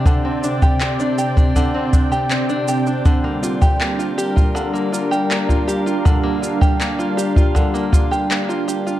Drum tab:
SH |x-xxxxxxx-xxxxxx|x-xxxxxxxxxxxxxx|x-xxxxxxxxxxxxxx|
CP |----x-------x---|----x-------x---|----x-------x---|
BD |o--o---oo-o-----|o--o---o-----o--|o--o---oo-o-----|